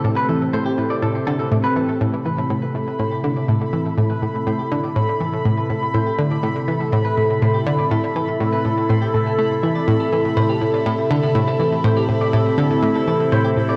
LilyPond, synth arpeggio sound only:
\new Staff \with { instrumentName = "Synth arpeggio sound" } { \clef bass \time 4/4 \key a \minor \tempo 4 = 122 a,8 e8 a,8 a,8 a,8 d8 a,8 e8 | a,8 e8 a,8 a,8 a,8 d8 a,8 e8 | a,8 a,8 a,8 d8 a,8 e8 a,8 a,8 | a,8 d8 a,8 e8 a,8 a,8 a,8 d8 |
a,8 e8 a,8 a,8 a,8 a,8 a8 e8 | a,8 e8 a,8 a,8 a,8 d8 a,8 e8 | a,8 a,8 a,8 d8 a,8 e8 a,8 a,8 | }